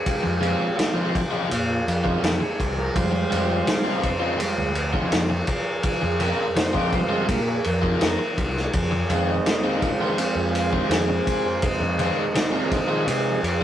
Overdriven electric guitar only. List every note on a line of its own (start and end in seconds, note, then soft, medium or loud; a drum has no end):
0.23 muted overdriven electric guitar stroke soft
0.41 0.65 F3 medium
0.41 0.65 G#3 medium
0.41 0.65 C4 medium
0.41 0.66 F4 loud
0.77 muted overdriven electric guitar stroke soft
0.94 1.20 F3 medium
0.94 1.20 G#3 medium
0.94 1.20 C4 medium
0.94 1.19 F4 medium
1.31 1.48 F3 medium
1.31 1.48 G#3 medium
1.31 1.49 C4 loud
1.31 1.49 F4 medium
1.50 muted overdriven electric guitar stroke soft
2.04 2.29 F3 medium
2.04 2.29 G#3 medium
2.04 2.28 C4 medium
2.04 2.28 F4 medium
2.40 muted overdriven electric guitar stroke soft
3.12 muted overdriven electric guitar stroke soft
3.31 3.55 F3 medium
3.31 3.55 G#3 medium
3.31 3.55 C4 medium
3.31 3.55 F4 medium
3.67 muted overdriven electric guitar stroke soft
3.84 4.09 F3 medium
3.84 4.09 G#3 medium
3.84 4.09 C4 medium
3.84 4.09 F4 medium
4.20 4.38 F3 medium
4.20 4.39 G#3 medium
4.20 4.39 C4 medium
4.20 4.39 F4 loud
4.39 muted overdriven electric guitar stroke soft
4.93 5.18 F3 medium
4.93 5.18 G#3 medium
4.93 5.18 C4 medium
4.93 5.17 F4 medium
5.29 muted overdriven electric guitar stroke soft
6.01 muted overdriven electric guitar stroke soft
6.20 6.44 F3 medium
6.20 6.44 G#3 medium
6.20 6.44 C4 medium
6.20 6.45 F4 loud
6.56 muted overdriven electric guitar stroke soft
6.74 6.99 F3 medium
6.74 6.98 G#3 medium
6.74 6.98 C4 medium
6.74 6.98 F4 medium
7.10 7.26 F3 medium
7.10 7.27 G#3 medium
7.10 7.27 C4 medium
7.10 7.27 F4 loud
7.28 muted overdriven electric guitar stroke soft
7.82 8.07 F3 medium
7.82 8.07 G#3 medium
7.82 8.07 C4 medium
7.82 8.06 F4 medium
8.19 muted overdriven electric guitar stroke soft
8.92 muted overdriven electric guitar stroke soft
9.10 9.34 D#3 medium
9.10 9.34 G#3 medium
9.10 9.34 C4 loud
9.10 9.34 F4 medium
9.46 muted overdriven electric guitar stroke soft
9.64 9.88 D#3 medium
9.64 9.88 G#3 medium
9.64 9.88 C4 medium
9.64 9.88 F4 medium
10.01 10.17 D#3 medium
10.01 10.18 G#3 medium
10.01 10.18 C4 medium
10.01 10.18 F4 loud
10.19 muted overdriven electric guitar stroke soft
10.73 10.97 D#3 medium
10.73 10.97 G#3 medium
10.73 10.97 C4 medium
10.73 10.96 F4 medium
11.08 muted overdriven electric guitar stroke soft
11.81 muted overdriven electric guitar stroke soft
11.99 12.23 D#3 medium
11.99 12.23 G#3 medium
11.99 12.23 C4 medium
11.99 12.23 F4 medium
12.35 muted overdriven electric guitar stroke soft
12.52 12.77 D#3 medium
12.52 12.77 G#3 medium
12.52 12.77 C4 medium
12.52 12.77 F4 medium
12.88 13.06 D#3 medium
12.88 13.06 G#3 medium
12.88 13.06 C4 loud
12.88 13.07 F4 loud
13.07 muted overdriven electric guitar stroke medium